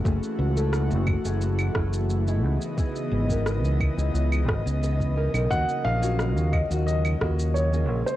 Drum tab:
SH |xx-xxx-xxx-xxx-x|xx-xxx-xxx-xxx-x|xx-xxx-xxx-xxx-x|
CL |------x--x------|------x--x-----x|------x--x------|
SD |----r-----r-----|----r-----r-----|----r-----r-----|
BD |o-----o---o-----|o--o--o---o--o--|o-----o---o-----|